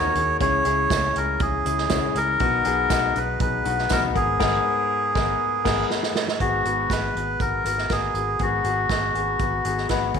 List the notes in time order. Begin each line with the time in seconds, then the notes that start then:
Already playing: D#2 D#3 D#4 F#4 G#4 A#4 C#5
0.03 floor tom
0.15 D#2 D#4 F#4 G#4, closed hi-hat
0.40 C#2 C#3 C#4 E4 G#4 C#5, kick, closed hi-hat
0.65 C#2 C#4 E4 G#4, closed hi-hat
0.90 C#2 C#4 E4 G#4, kick, snare, closed hi-hat, tambourine
1.16 C#2 C#4 E4 G#4 A#4, closed hi-hat
1.40 C#2 C#4 E4 G#4, kick, closed hi-hat
1.65 C#2 C#4 E4 G#4, closed hi-hat
1.78 snare
1.89 C#2 C#4 E4 G#4, kick, snare, closed hi-hat, tambourine
2.02 floor tom
2.15 C#2 C#4 E4 G#4 A#4, closed hi-hat
2.40 B1 B2 B3 D#4 F#4, kick, closed hi-hat
2.65 B1 B3 D#4 G#4, closed hi-hat
2.89 B1 B3 D#4 F#4, kick, snare, closed hi-hat, tambourine
3.15 B1 B3 D#4 F#4 B4, closed hi-hat
3.40 B1 B3 D#4 G#4 B4, kick, closed hi-hat
3.65 B1 B3 D#4 F#4, closed hi-hat
3.78 snare
3.89 B1 B3 D#4 F#4 A#4, kick, snare, closed hi-hat, tambourine
4.03 floor tom
4.15 G#1 G#2 B3 G#4 A#4, kick, closed hi-hat
4.39 G#1 G#2 B3 G#4 A#4, kick, snare, crash
5.15 G#1 B3 G#4 A#4, kick, snare
5.65 G#1 B3 G#4 A#4, kick, snare, crash
5.90 snare
6.03 snare
6.16 snare
6.28 snare
6.40 G#1 G#2 B3 F#4 G#4, kick, closed hi-hat
6.65 G#1 B3 F#4 G#4, closed hi-hat
6.90 G#1 B3 F#4 G#4 B4, kick, snare, closed hi-hat
7.15 G#1 B3 F#4 B4, closed hi-hat
7.40 G#1 B3 F#4 A#4, kick, closed hi-hat
7.64 G#1 B3 F#4 A#4, closed hi-hat
7.78 snare
7.89 G#1 B3 F#4 G#4 A#4, kick, snare, closed hi-hat
8.14 G#1 B3 F#4 G#4, closed hi-hat
8.39 G#1 G#2 B3 F#4 G#4, kick, closed hi-hat
8.64 G#1 B3 F#4 G#4, closed hi-hat
8.89 G#1 B3 F#4 G#4, kick, snare, closed hi-hat
9.14 G#1 B3 F#4 G#4, closed hi-hat
9.39 G#1 B3 F#4 G#4, kick, closed hi-hat
9.65 G#1 B3 F#4 G#4, closed hi-hat
9.78 snare
9.89 G#1 B3 F#4 B4, kick, snare, closed hi-hat
10.14 C#2 C#3 C#4 E4 G#4, kick, closed hi-hat